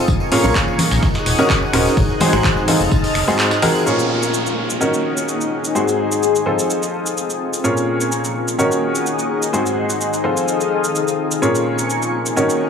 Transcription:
Already playing: F4
0.07 A#1 D#4 A#4 G#5 C#6, kick, tambourine
0.20 tambourine
0.32 A#2 C#4 F4 G#4 A#4 C#5, snare, open hi-hat, tambourine
0.44 A#1 A#2 C#4 F4 G#4 A#4 C#5, tambourine
0.50 G#4 C#5
0.55 kick, snare, clap, tambourine, high conga
0.68 tambourine
0.78 snare, open hi-hat, tambourine, high conga
0.91 A#1, snare, tambourine
1.03 C#5 F#5 D#6, kick, snare, tambourine
1.14 snare, tambourine
1.26 D#1, snare, open hi-hat, tambourine
1.39 D#3 C#4 D#4 F#4 A#4 C#5, tambourine
1.50 kick, clap, tambourine
1.62 tambourine
1.73 D#1 C#4 D#4 F#4 A#4 C5, finger snap, open hi-hat, tambourine
1.86 snare, tambourine
1.97 G#1 C5 G#5 F#6, kick, open hi-hat, tambourine
2.10 tambourine
2.20 G#2 C4 D#4 F#4 G#4 C5, open hi-hat, tambourine, high conga
2.33 G#1 G#2 C4 D#4 F#4 G#4 C5, finger snap, tambourine
2.44 kick, snare, clap, tambourine, high conga
2.56 snare, tambourine
2.68 F3 C4 D#4 F4 A4 C5 D#5 A5 F6, open hi-hat, tambourine, high conga
2.80 F1, tambourine
2.89 F4, kick, tambourine
3.04 snare, open hi-hat, tambourine
3.15 F1, finger snap, clap, open hi-hat, tambourine
3.28 G#2 C4 D#4 F#4 G#4 C5, snare, tambourine
3.39 C5 G#5 F#6, snare, clap, tambourine
3.51 snare, tambourine
3.62 C4 D#4 F#4 G#4 A#4, snare, open hi-hat, tambourine, high conga
3.75 tambourine
3.86 A#2 A#3 C#4 F4 G#4 A#4 C#5 G#5 C#6, downlifter, shaker
3.99 D#4, shaker
4.17 C#5
4.23 shaker
4.29 G#4
4.34 shaker
4.46 shaker
4.70 shaker
4.80 D#3 C#4 D#4 F#4 A#4 C#5 F#5 D#6, shaker
4.94 shaker
5.17 shaker
5.29 shaker
5.41 shaker
5.65 shaker
5.75 G#2 C4 D#4 F#4 G#4 C5 C6, shaker
5.88 shaker
6.12 shaker
6.23 shaker
6.35 shaker
6.46 F3 C4 D#4 F4 A4 C5 F5 D#6
6.59 shaker
6.70 shaker
6.77 F4
6.83 shaker
7.06 shaker
7.17 shaker
7.30 shaker
7.54 shaker
7.64 A#2 A#3 C#4 F4 G#4 A#4 C#5 G#5 C#6, shaker
7.68 D#4
7.75 G#4, shaker
8.01 shaker
8.07 C#5
8.12 shaker
8.24 shaker
8.48 shaker
8.59 D#3 C#4 D#4 F#4 A#4 C#5 F#5 D#6, shaker
8.72 shaker
8.95 shaker
9.06 shaker
9.19 shaker
9.43 shaker
9.53 G#2 C4 D#4 F#4 G#4 C5 F#5 C6, shaker
9.66 shaker
9.90 shaker
10.01 shaker
10.13 shaker
10.24 F3 C4 D#4 F4 A4 C5 F5 D#6
10.37 F4, shaker
10.48 shaker
10.61 shaker
10.84 shaker
10.95 shaker
11.08 shaker
11.31 shaker
11.42 A#2 A#3 C#4 F4 G#4 A#4 C#5 G#5 C#6, shaker
11.53 D#4 G#4, shaker
11.79 shaker
11.85 C#5
11.90 shaker
12.02 shaker
12.26 shaker
12.36 D#3 C#4 D#4 F#4 A#4 C#5 F#5 D#6, shaker
12.50 shaker

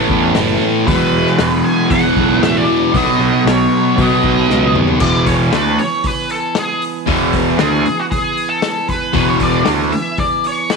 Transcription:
Already playing: A2 E3 A3 B3 C#4 A4 B4
0.10 E2, kick
0.35 F#1, snare, open hi-hat
0.85 E1 E2 B2 F#3 E4 G#4 B4, kick, open hi-hat
0.91 E3
1.13 E1
1.26 snare
1.38 E1, snare, open hi-hat
1.65 G#5
1.90 E2 B2 F#5, kick, open hi-hat
1.95 E3
2.17 B1, kick
2.42 A1 E5, snare, open hi-hat
2.58 D5
2.93 B1 B2 F#3 B3 D#4 A4 D#5, kick, open hi-hat
3.20 B1
3.45 B1 C#5, snare, open hi-hat
3.97 B2 F#3 B3, kick, open hi-hat
4.01 D#5
4.24 B1, kick
4.49 C#2, snare
4.63 high tom
4.75 D#2, mid tom
4.88 floor tom
5.00 E1 E2 B2 E3 B3 B4 D5 G#5, kick, crash
5.26 C#5, kick, open hi-hat
5.52 D2 D3 A3 D4 B4, snare, open hi-hat
5.79 C#5, open hi-hat
6.04 B4, kick, open hi-hat
6.29 A4, open hi-hat
6.55 G#4, snare, open hi-hat
6.82 open hi-hat
7.06 E1 E2 B2 E3, kick, open hi-hat
7.33 kick, open hi-hat
7.58 D2 D3 A3 D4 G#4, snare, open hi-hat
7.86 open hi-hat
8.00 F#4
8.11 G#4, kick, open hi-hat
8.37 open hi-hat
8.50 A4
8.62 snare, open hi-hat
8.89 B4, kick, open hi-hat
9.13 E1 E2 B2 E3, kick, open hi-hat
9.30 C#5
9.40 D5, kick, open hi-hat
9.65 D2 D3 A3 D4, snare, open hi-hat
9.92 E5, open hi-hat
10.18 D5, kick, open hi-hat
10.44 C#5, open hi-hat
10.70 B4, snare, open hi-hat

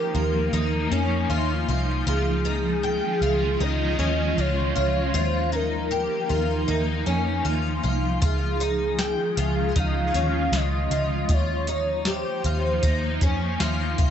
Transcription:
Already playing: F3 A#3 D#4 G4 A#4
0.15 D#2 F4
0.53 D#2 D#4
0.91 F2 C#4
1.30 D#2 F4
1.68 C2 F4
2.05 C#2 D#3 G#3 C#4 F4 G#4
2.45 D#4
2.83 G5
3.21 C#2 F4
3.60 C#2 D#4 D#5
3.99 D#2 C#4
4.38 C#2 F4 C#5
4.76 C#2 F4
5.14 D#2 F3 A#3 D#4 F4 C5
5.52 D#4 A#4
5.91 G4
6.29 D#2 F4
6.68 D#2 D#4
7.06 F2 C#4
7.45 D#2 F4
7.83 C2 F4
8.22 C#2 D#3 G#3 C#4 F4 G#4, kick, closed hi-hat
8.60 D#4, closed hi-hat
8.99 G5, snare, closed hi-hat
9.37 C#2 F4, closed hi-hat
9.76 C#2 D#4 F5, kick, closed hi-hat
10.14 D#2 C#4, closed hi-hat
10.52 C#2 F4, snare, closed hi-hat
10.57 D#5
10.90 C#2 F4, closed hi-hat
11.29 D#2 F3 A#3 D#4 F4, kick, closed hi-hat
11.34 C#5
11.67 D#4, closed hi-hat
12.05 G4, snare, closed hi-hat
12.10 C5
12.44 D#2 F4, closed hi-hat
12.83 D#2 D#4, kick, closed hi-hat
13.21 F2 C#4, kick, closed hi-hat
13.60 D#2 F4, snare, closed hi-hat
13.98 C2 F4, kick, closed hi-hat

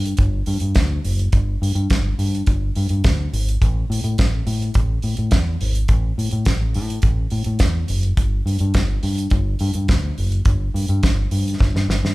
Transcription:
Already playing: G2
0.06 closed hi-hat
0.17 G1, kick, closed hi-hat
0.46 G2, open hi-hat
0.60 G2, closed hi-hat
0.75 D2, kick, snare, closed hi-hat
1.05 F#1, open hi-hat
1.19 closed hi-hat
1.32 G1, kick, closed hi-hat
1.62 G2, open hi-hat
1.75 G2, closed hi-hat
1.90 G1, kick, snare, closed hi-hat
2.19 G2, open hi-hat
2.35 closed hi-hat
2.46 G1, kick, closed hi-hat
2.75 G2, open hi-hat
2.89 G2, closed hi-hat
3.04 D2, kick, snare, closed hi-hat
3.33 G#1, open hi-hat
3.48 closed hi-hat
3.62 A1, kick, closed hi-hat
3.90 A2, open hi-hat
4.04 A2, closed hi-hat
4.18 A1, kick, snare, closed hi-hat
4.47 A2, open hi-hat
4.62 closed hi-hat
4.74 A1, kick, closed hi-hat
5.02 A2, open hi-hat
5.17 A2, closed hi-hat
5.31 E2, kick, snare, closed hi-hat
5.61 G#1, open hi-hat
5.75 closed hi-hat
5.88 A1, kick, closed hi-hat
6.18 A2, open hi-hat
6.31 A2, closed hi-hat
6.45 A1, kick, snare, closed hi-hat
6.74 A2, open hi-hat
6.90 closed hi-hat
7.02 A1, kick, closed hi-hat
7.30 A2, open hi-hat
7.44 A2, closed hi-hat
7.59 E2, kick, snare, closed hi-hat
7.88 F#1, open hi-hat
8.03 closed hi-hat
8.17 G1, kick, closed hi-hat
8.46 G2, open hi-hat
8.59 G2, closed hi-hat
8.74 G1, kick, snare, closed hi-hat
9.03 G2, open hi-hat
9.18 closed hi-hat
9.30 G1, kick, closed hi-hat
9.59 G2, open hi-hat
9.74 G2, closed hi-hat
9.88 D2, kick, snare, closed hi-hat
10.18 F#1, open hi-hat
10.32 closed hi-hat
10.45 G1, kick, closed hi-hat
10.74 G2, open hi-hat
10.88 G2, closed hi-hat
11.03 G1, kick, snare, closed hi-hat
11.31 G2, open hi-hat
11.48 closed hi-hat
11.60 G1, kick, snare
11.74 G2, snare
11.88 G1, snare
12.03 G2, snare

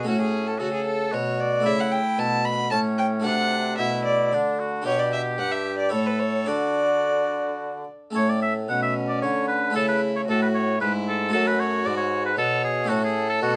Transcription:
0.03 A3 C#4 F#4
0.07 A2 C#4 F#4
0.22 G#4
0.47 A4
0.59 C#3 F#4 A4
0.74 G#4
0.86 A4
1.12 B2 F#4 C#5
1.40 D5
1.60 A3 E4
1.65 C#3 E4 E5
1.80 F#5
1.92 G5
2.17 B2 A5
2.45 B5
2.71 A2 C#4 A5
2.98 G5
3.20 A3 D4 F#4
3.24 C3 D4 F#5
3.78 B2 E4 E5
4.05 D5
4.32 D3 D4
4.59 F#4
4.82 B2 D4 G4
4.86 G4 C#5
4.99 D5
5.13 E5
5.38 G2 F#5
5.52 E5
5.78 D5
5.89 A2 E4 A4 C#5
6.06 B4
6.20 C#5
6.45 D3 D4 F#4 A4 D5
8.11 A3 C#4 A4
8.15 A2 C#5
8.29 D5
8.42 E5
8.68 B2 C#4 F#5
8.83 E5
9.09 D5
9.22 D3 C#5
9.48 B4
9.70 A3 C#4 A4
9.75 C#3 E4 A4
9.89 B4
10.16 C#5
10.28 A2 F#4 A4
10.42 B4
10.54 C#5
10.80 G#2 E4 B4
11.08 A4
11.29 A3 C#4 F#4 A4
11.33 F#2
11.47 B4
11.60 C#5
11.85 G#2 D5
11.97 C#5
12.26 B4
12.36 B2 A4 C#5
12.64 G#4
12.84 A3 C#4 A4
12.88 A2 F#4 A4
13.04 G#4
13.30 A4
13.42 B2 F#4

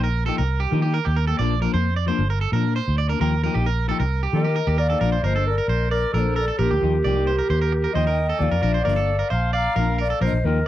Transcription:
Already playing: A#1
0.04 A#4
0.25 F3 A#3 D#4 G4 A4
0.38 C2 A#4
0.60 G4
0.71 D#3 F3 A#3 D#4 G4
0.82 A#3 D#4 G4
0.94 A#4
1.05 D#2 G4
1.16 A#4
1.27 A#3 G4 A4
1.39 A#1 F3 A#3 D4 D5
1.61 F3 A#3 D4 A#4
1.74 F2 A#3 C5
1.96 D5
2.06 F3 A#3 D4 C5
2.19 G1
2.30 A#4
2.41 A4
2.52 A#2 F3 D4 A#4
2.63 A#3 D4
2.76 C5
2.88 D2
2.98 D5
3.09 A#3 D4 A#4
3.20 D#2 F3 A#3 G4 A#4, muted clean electric guitar stroke
3.43 F3 A#3 D#4 G4 A#4
3.53 A#1 A#3 D#4 G4
3.66 A#4
3.88 F3 A#3 D#4 G4 A4
4.00 C2 A#4
4.23 G4
4.33 D#3 F3 A#3 D#4 G4 A#4 D#5
4.44 A#3 D#4 G4
4.56 A#4
4.67 D#2 G4
4.78 A#4 D5 F5
4.89 A#3 D#4 G4 A4
5.00 A#1 F3 A#3 D4 A#4
5.12 C5
5.23 G1 F3 A#3 A#4 C5 D#5, muted clean electric guitar stroke
5.34 A#3 D4 A4
5.47 A#4 D5
5.58 A#4
5.68 A#1 C5
5.91 A#4 D5
6.13 A#1 F3 A#3 A4 A#4 D5
6.17 D4 C5
6.25 A#3 D4
6.35 A4 A#4
6.40 D5
6.48 A4
6.58 A#1 F3 A#3 D4 G4 A#4
6.71 D2 G4
6.81 D#2 F3 A#3 D#4 G4
7.04 C2 F3 A#3 D#4 G4 D5
7.16 A#3 D#4 G4
7.27 C5
7.39 A#4
7.50 D#2 C5
7.62 A#4
7.72 muted clean electric guitar stroke
7.84 A#4
7.93 D#2 F3 A#3 D#4 G4 C5 D#5 G5
8.04 A#3 D#4 G4 A#4
8.29 A4
8.39 D#2 F3 A#3 D#4 D5 F5
8.43 G4
8.51 F2 A#4
8.62 A#1 F3 D4 A#4, muted clean electric guitar stroke
8.74 C5
8.84 G1 F3 A#3 D4 A#4 D5
8.89 F5
8.96 A#3 D4 A4
9.19 A#4
9.30 A#1 C5 F5 A#5
9.38 A5
9.53 D5 F5 A#5
9.76 A#1 F3 A#3 D4 A#4
9.86 A#3 D4
9.98 A#4 D5
10.03 F5
10.10 A4
10.20 A#1 F3 A#3 D4 A#4 C5
10.25 D#5
10.33 A#1
10.44 D#2 F3 A#3 D#4 G4 A#4 D#5

